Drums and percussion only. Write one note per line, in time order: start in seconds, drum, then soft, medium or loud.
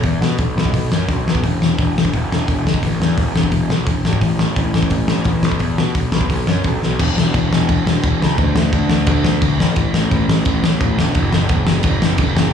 0.03 kick medium
0.03 open hi-hat medium
0.22 snare loud
0.38 kick loud
0.38 open hi-hat medium
0.58 snare loud
0.65 kick medium
0.74 kick loud
0.74 open hi-hat medium
0.92 snare loud
1.09 kick loud
1.09 open hi-hat medium
1.28 snare loud
1.35 kick medium
1.44 kick medium
1.44 open hi-hat medium
1.62 snare loud
1.79 kick loud
1.79 open hi-hat medium
1.98 snare loud
2.05 kick medium
2.13 kick loud
2.13 open hi-hat medium
2.32 snare loud
2.48 kick loud
2.48 open hi-hat medium
2.67 snare loud
2.74 kick medium
2.83 kick medium
2.83 open hi-hat medium
3.02 snare loud
3.18 kick loud
3.18 open hi-hat medium
3.36 snare loud
3.43 kick medium
3.52 kick loud
3.52 open hi-hat medium
3.70 snare loud
3.87 kick loud
3.87 open hi-hat medium
4.05 snare loud
4.13 kick medium
4.21 kick medium
4.21 open hi-hat medium
4.39 snare loud
4.56 kick loud
4.56 open hi-hat medium
4.74 snare loud
4.83 kick medium
4.90 kick loud
4.90 open hi-hat medium
5.08 snare loud
5.24 kick loud
5.24 open hi-hat medium
5.43 snare loud
5.52 kick medium
5.59 kick medium
5.59 open hi-hat medium
5.78 snare loud
5.95 kick loud
5.95 open hi-hat medium
6.12 snare loud
6.21 kick medium
6.30 kick loud
6.30 open hi-hat medium
6.47 snare loud
6.64 kick loud
6.64 open hi-hat medium
6.83 snare medium
6.99 kick loud
6.99 crash loud
6.99 crash medium
7.18 snare loud
7.34 kick loud
7.34 crash medium
7.53 snare loud
7.69 kick loud
7.69 crash medium
7.87 snare loud
8.04 kick loud
8.04 crash medium
8.22 snare loud
8.38 kick loud
8.38 crash medium
8.56 snare loud
8.73 kick loud
8.73 crash medium
8.90 snare loud
9.06 kick loud
9.06 crash medium
9.25 snare loud
9.42 kick loud
9.42 crash medium
9.60 snare loud
9.76 kick loud
9.76 crash medium
9.94 snare loud
10.11 kick loud
10.11 crash medium
10.29 snare loud
10.45 kick loud
10.45 crash medium
10.64 snare loud
10.81 kick loud
10.81 crash medium
10.99 snare loud
11.15 kick loud
11.15 crash medium
11.32 snare loud
11.49 kick loud
11.49 crash medium
11.67 snare loud
11.83 kick loud
11.83 crash medium
12.02 snare loud
12.18 kick loud
12.18 crash medium
12.37 snare loud